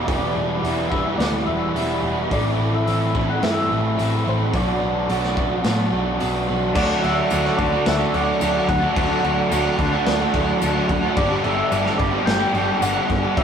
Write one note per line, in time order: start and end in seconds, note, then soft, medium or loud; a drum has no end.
0.05 0.34 E1 loud
0.05 0.62 E2 medium
0.05 0.63 B2 loud
0.05 0.35 E3 medium
0.05 0.35 G3 medium
0.05 0.33 B3 loud
0.05 0.33 E4 loud
0.05 0.91 D5 loud
0.05 kick loud
0.05 open hi-hat medium
0.33 0.61 E1 medium
0.33 0.60 E3 medium
0.33 0.62 G3 medium
0.33 0.62 B3 medium
0.33 0.63 E4 medium
0.61 1.15 E1 medium
0.61 0.91 E3 medium
0.61 0.91 G3 medium
0.61 0.90 B3 medium
0.61 0.89 E4 medium
0.61 open hi-hat soft
0.89 1.17 E3 medium
0.89 1.18 G3 medium
0.89 1.18 B3 medium
0.89 1.18 E4 medium
0.89 1.19 E5 medium
0.89 kick medium
1.17 1.45 D2 medium
1.17 1.74 E2 medium
1.17 1.74 B2 medium
1.17 1.47 E3 medium
1.17 1.46 G3 loud
1.17 1.45 B3 medium
1.17 1.44 E4 loud
1.17 1.48 D5 medium
1.17 snare loud
1.17 open hi-hat medium
1.45 1.73 E1 medium
1.45 1.73 E3 medium
1.45 1.75 G3 medium
1.45 1.75 B3 medium
1.45 1.76 E4 medium
1.45 2.03 E5 medium
1.74 2.00 E1 medium
1.74 2.04 E3 medium
1.74 2.03 G3 medium
1.74 2.03 B3 medium
1.74 2.01 E4 medium
1.74 open hi-hat medium
2.02 2.29 E1 medium
2.02 2.29 E3 medium
2.02 2.30 G3 medium
2.02 2.30 B3 medium
2.02 2.29 E4 medium
2.29 2.57 A1 loud
2.29 2.86 A2 medium
2.29 2.86 E3 medium
2.29 2.61 A3 loud
2.29 2.58 C4 medium
2.29 2.57 E4 loud
2.29 2.77 D5 loud
2.29 kick medium
2.29 open hi-hat soft
2.59 2.84 A1 medium
2.59 2.88 A3 medium
2.59 2.87 C4 medium
2.59 2.88 E4 medium
2.75 3.31 E5 loud
2.87 3.38 A1 medium
2.87 3.41 E3 medium
2.87 3.17 A3 medium
2.87 3.14 C4 medium
2.87 3.14 E4 medium
2.87 open hi-hat soft
3.15 3.42 A3 medium
3.15 3.42 C4 medium
3.15 3.43 E4 medium
3.15 kick medium
3.29 3.45 F#5 loud
3.41 3.68 G2 medium
3.41 3.97 A2 medium
3.41 3.95 E3 medium
3.41 3.71 A3 medium
3.41 3.69 C4 medium
3.41 3.68 E4 loud
3.41 3.85 E5 loud
3.41 snare loud
3.41 open hi-hat medium
3.69 3.96 A1 medium
3.69 3.97 A3 medium
3.69 3.96 C4 medium
3.69 3.97 E4 medium
3.88 4.30 E5 loud
3.96 4.24 A1 medium
3.96 4.51 E3 medium
3.96 4.26 A3 medium
3.96 4.24 C4 medium
3.96 4.23 E4 medium
3.96 open hi-hat medium
4.24 4.52 A1 medium
4.24 4.54 A3 medium
4.24 4.52 C4 medium
4.24 4.51 E4 medium
4.29 4.57 C5 medium
4.53 4.79 B1 loud
4.53 5.09 B2 medium
4.53 5.08 F#3 medium
4.53 4.82 B3 loud
4.53 4.81 D4 medium
4.53 4.79 F#4 loud
4.53 6.21 D5 loud
4.53 kick loud
4.53 open hi-hat medium
4.80 5.07 B1 medium
4.80 5.09 B3 medium
4.80 5.10 D4 medium
4.80 5.10 F#4 medium
5.09 5.61 B1 medium
5.09 5.63 B2 medium
5.09 5.62 F#3 medium
5.09 5.38 B3 medium
5.09 5.37 D4 loud
5.09 5.35 F#4 medium
5.09 open hi-hat medium
5.23 snare soft
5.37 5.63 B3 medium
5.37 5.63 D4 medium
5.37 5.63 F#4 medium
5.37 kick medium
5.63 5.90 A2 medium
5.63 6.19 B2 medium
5.63 6.18 F#3 loud
5.63 5.91 B3 loud
5.63 5.91 D4 loud
5.63 5.89 F#4 loud
5.63 snare loud
5.63 open hi-hat soft
5.90 6.18 B1 medium
5.90 6.19 B3 medium
5.90 6.19 D4 medium
5.90 6.20 F#4 medium
6.19 6.46 B1 medium
6.19 6.73 B2 medium
6.19 6.73 F#3 medium
6.19 6.49 B3 medium
6.19 6.47 D4 medium
6.19 6.46 F#4 medium
6.19 open hi-hat medium
6.47 6.74 B1 medium
6.47 6.75 B3 soft
6.47 6.74 D4 medium
6.47 6.73 F#4 medium
6.75 6.93 D2 loud
6.75 7.30 D3 medium
6.75 7.02 F#3 medium
6.75 7.03 A3 loud
6.75 7.04 D4 medium
6.75 7.05 F#4 loud
6.75 7.03 D5 loud
6.75 kick loud
6.75 crash loud
6.75 crash medium
7.02 7.21 D2 medium
7.02 7.31 D3 medium
7.02 7.31 F#3 medium
7.02 7.32 A3 medium
7.02 7.32 D4 medium
7.02 7.33 F#4 medium
7.02 7.59 E5 loud
7.02 crash medium
7.30 7.49 D2 medium
7.30 8.41 D3 loud
7.30 7.59 F#3 loud
7.30 7.47 A3 medium
7.30 7.46 D4 loud
7.30 7.45 F#4 loud
7.30 tambourine medium
7.30 crash medium
7.45 7.58 F#3 medium
7.45 7.59 A3 medium
7.45 7.60 D4 medium
7.45 7.59 F#4 medium
7.45 snare soft
7.57 7.76 D2 loud
7.57 7.99 D3 medium
7.57 7.73 F#3 medium
7.57 7.72 A3 medium
7.57 7.71 D4 medium
7.57 7.85 D5 medium
7.57 muted overdriven electric guitar stroke soft
7.57 kick medium
7.57 crash medium
7.72 7.99 F#3 medium
7.72 8.01 A3 medium
7.72 8.01 D4 medium
7.72 7.98 F#4 medium
7.86 8.04 D2 medium
7.86 8.16 E5 loud
7.86 snare loud
7.86 crash medium
8.00 8.12 F#3 medium
8.00 8.14 A3 medium
8.00 8.16 D4 medium
8.00 8.16 F#4 medium
8.12 8.31 D2 loud
8.12 8.39 D3 medium
8.12 8.40 F#3 medium
8.12 8.41 A3 medium
8.12 8.43 D4 medium
8.12 8.71 D5 loud
8.12 crash medium
8.17 8.43 F#4 medium
8.41 8.58 D2 medium
8.41 8.82 D3 loud
8.41 8.83 F#3 loud
8.41 8.58 A3 medium
8.41 8.57 D4 loud
8.41 8.55 F#4 loud
8.41 tambourine loud
8.41 crash medium
8.53 8.68 F#3 medium
8.53 8.69 D4 medium
8.53 8.81 F#4 medium
8.57 8.84 A3 medium
8.57 8.83 D4 medium
8.68 8.86 D2 medium
8.68 8.96 F#5 loud
8.68 muted overdriven electric guitar stroke soft
8.68 kick medium
8.68 crash medium
8.82 8.94 F#3 medium
8.82 8.97 A3 medium
8.82 8.98 D4 medium
8.82 8.97 F#4 medium
8.96 9.14 D2 medium
8.96 9.50 D3 medium
8.96 9.22 F#3 loud
8.96 9.23 A3 loud
8.96 9.25 D4 medium
8.96 9.25 F#4 loud
8.96 9.76 F#5 loud
8.96 kick loud
8.96 crash medium
9.23 9.41 D2 medium
9.23 9.49 D3 medium
9.23 9.51 F#3 medium
9.23 9.51 A3 medium
9.23 9.53 D4 medium
9.23 9.53 F#4 medium
9.23 crash medium
9.51 9.69 D2 loud
9.51 9.92 D3 loud
9.51 9.78 F#3 loud
9.51 9.66 A3 loud
9.51 9.66 D4 loud
9.51 9.64 F#4 loud
9.51 tambourine loud
9.51 crash loud
9.65 9.77 F#3 medium
9.65 9.78 A3 medium
9.65 9.79 D4 medium
9.65 9.79 F#4 medium
9.77 9.96 D2 medium
9.77 10.19 D3 medium
9.77 9.92 F#3 medium
9.77 9.92 A3 medium
9.77 9.90 D4 loud
9.77 muted overdriven electric guitar stroke soft
9.77 kick medium
9.77 crash medium
9.92 10.20 F#3 medium
9.92 10.22 A3 medium
9.92 10.21 D4 medium
9.92 10.20 F#4 medium
10.06 10.24 D2 medium
10.06 snare loud
10.06 crash medium
10.21 10.33 F#3 medium
10.21 10.34 A3 medium
10.21 10.35 D4 medium
10.21 10.35 F#4 medium
10.33 10.52 D2 medium
10.33 10.59 D3 medium
10.33 10.61 F#3 medium
10.33 10.62 A3 medium
10.33 10.62 D4 medium
10.33 10.63 F#4 medium
10.33 kick medium
10.33 crash medium
10.62 10.79 D2 medium
10.62 11.03 D3 loud
10.62 11.03 F#3 loud
10.62 10.76 A3 loud
10.62 10.75 D4 loud
10.62 10.74 F#4 loud
10.62 tambourine loud
10.62 crash medium
10.75 10.89 F#3 medium
10.75 11.05 A3 medium
10.75 11.04 D4 medium
10.75 11.02 F#4 medium
10.89 11.07 D2 loud
10.89 muted overdriven electric guitar stroke soft
10.89 kick medium
10.89 crash medium
11.03 11.16 F#3 medium
11.03 11.16 A3 medium
11.03 11.16 D4 medium
11.03 11.15 F#4 medium
11.16 11.34 G1 loud
11.16 11.69 G2 loud
11.16 11.70 D3 loud
11.16 11.44 G3 medium
11.16 11.45 B3 loud
11.16 11.45 D4 loud
11.16 11.46 G4 medium
11.16 11.46 D5 loud
11.16 kick loud
11.16 crash medium
11.43 11.62 G1 loud
11.43 11.69 D3 medium
11.43 11.71 G3 medium
11.43 11.72 B3 medium
11.43 11.72 D4 medium
11.43 11.73 G4 medium
11.43 11.99 E5 loud
11.43 crash medium
11.71 11.89 G1 loud
11.71 12.12 G2 loud
11.71 12.13 D3 loud
11.71 11.87 G3 loud
11.71 11.86 B3 loud
11.71 11.85 D4 loud
11.71 11.84 G4 loud
11.71 tambourine medium
11.71 crash medium
11.85 11.98 G3 medium
11.85 11.98 B3 medium
11.85 11.98 D4 medium
11.85 11.98 G4 medium
11.85 snare soft
11.97 12.17 G1 loud
11.97 13.36 G2 medium
11.97 12.39 D3 medium
11.97 12.12 G3 medium
11.97 12.10 B3 medium
11.97 12.08 D4 medium
11.97 12.27 D5 loud
11.97 muted overdriven electric guitar stroke soft
11.97 kick medium
11.97 crash medium
12.11 12.41 G3 medium
12.11 12.40 B3 medium
12.11 12.39 D4 medium
12.11 12.39 G4 medium
12.25 12.44 G1 medium
12.25 12.84 G5 loud
12.25 snare loud
12.25 crash medium
12.39 12.53 G3 medium
12.39 12.55 B3 medium
12.39 12.54 D4 medium
12.39 12.56 G4 medium
12.51 12.71 G1 medium
12.51 12.78 D3 medium
12.51 12.81 G3 medium
12.51 12.81 B3 medium
12.51 crash medium
12.56 12.81 D4 medium
12.56 12.83 G4 medium
12.81 12.99 G1 loud
12.81 13.23 G2 medium
12.81 13.23 D3 loud
12.81 12.97 G3 loud
12.81 12.96 B3 loud
12.81 12.95 D4 loud
12.81 12.95 G4 loud
12.81 13.37 F#5 loud
12.81 tambourine loud
12.81 crash medium
12.92 13.07 D4 medium
12.92 13.23 G4 medium
12.96 13.25 G3 medium
12.96 13.24 B3 medium
12.96 13.22 D4 medium
13.08 13.28 G1 loud
13.08 muted overdriven electric guitar stroke soft
13.08 kick medium
13.08 crash medium
13.23 13.36 G3 medium
13.23 13.37 B3 medium
13.23 13.36 D4 medium
13.23 13.37 G4 medium
13.36 13.44 E1 loud
13.36 13.44 E2 medium
13.36 13.44 B2 loud
13.36 13.44 E3 loud
13.36 13.44 G3 loud
13.36 13.44 B3 loud
13.36 13.44 E4 loud
13.36 13.44 G4 loud
13.36 13.44 E5 loud
13.36 kick loud
13.36 crash medium